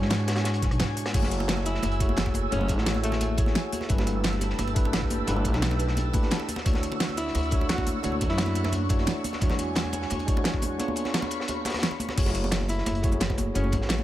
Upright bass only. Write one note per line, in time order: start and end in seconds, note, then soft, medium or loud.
0.02 0.64 G#2 medium
0.62 0.78 B1 medium
0.80 1.13 G#2 medium
1.14 1.82 F#1 loud
1.83 2.51 F#1 medium
2.52 2.78 F#1 loud
2.78 3.54 A1 medium
3.90 4.57 G1 loud
4.59 5.26 G1 medium
5.27 5.54 G1 loud
5.54 6.14 B1 loud
6.14 6.30 A1 medium
6.66 7.33 D2 loud
7.35 8.02 D2 medium
8.04 8.30 D2 loud
8.30 9.06 F#2 medium
9.42 10.09 E2 loud
10.11 10.78 E2 medium
12.18 12.85 F#1 loud
12.87 13.54 F#1 medium
13.55 13.81 F#1 loud
13.81 14.04 A1 medium